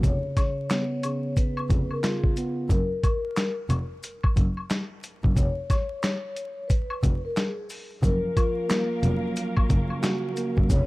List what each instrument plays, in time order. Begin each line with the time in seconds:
0.03 double bass F1, tine electric piano C#3, vibraphone C#5, kick, closed hi-hat, maracas
0.36 tine electric piano C#3, vibraphone C#5, kick, snare, closed hi-hat, high woodblock, maracas
0.70 tine electric piano B3, snare, clap, closed hi-hat, maracas
1.03 tine electric piano C#3, closed hi-hat, high woodblock, maracas
1.37 vibraphone B4, kick, closed hi-hat, maracas
1.57 high woodblock
1.70 double bass F1, tine electric piano C#3, kick, closed hi-hat, maracas
1.91 vibraphone A#4, high woodblock
2.03 tine electric piano F4, vibraphone G#4, snare, clap, closed hi-hat, maracas
2.24 kick
2.37 tine electric piano B3, closed hi-hat, maracas
2.70 double bass F#1, vibraphone A#4, kick, closed hi-hat, maracas
3.03 kick, closed hi-hat, high woodblock, maracas
3.36 snare, clap, closed hi-hat, maracas
3.70 double bass F1, closed hi-hat, high woodblock, maracas
4.03 closed hi-hat, maracas
4.24 kick, high woodblock
4.37 double bass F#1, kick, closed hi-hat, maracas
4.57 high woodblock
4.70 snare, clap, closed hi-hat, maracas
5.03 closed hi-hat, maracas
5.24 double bass F#1, kick
5.37 double bass F1, vibraphone C#5, kick, closed hi-hat, maracas
5.70 vibraphone C#5, kick, snare, closed hi-hat, high woodblock, maracas
6.03 snare, clap, closed hi-hat, maracas
6.36 closed hi-hat, maracas
6.68 vibraphone B4, kick, closed hi-hat, maracas
6.90 high woodblock
7.03 double bass F1, kick, closed hi-hat, maracas
7.25 vibraphone A#4
7.36 vibraphone G#4, snare, clap, closed hi-hat, maracas
7.70 open hi-hat, maracas
8.02 double bass F#1, tine electric piano F3, string section A#3 C#4 A#4 F5, vibraphone A#4, kick, closed hi-hat, maracas
8.37 tine electric piano F4, kick, closed hi-hat, high woodblock, maracas
8.69 tine electric piano A#3, snare, clap, closed hi-hat, maracas
9.02 double bass F1, tine electric piano F#3, closed hi-hat, maracas
9.36 closed hi-hat, maracas
9.57 kick, high woodblock
9.70 double bass F#1, tine electric piano C#3, kick, closed hi-hat, maracas
9.90 high woodblock
10.03 tine electric piano F#4, snare, clap, closed hi-hat, maracas
10.36 tine electric piano A#3, closed hi-hat, maracas
10.58 double bass F#1, kick
10.70 double bass F1, tine electric piano C#3, string section F3 D#4 B4, vibraphone C#5, kick, closed hi-hat, maracas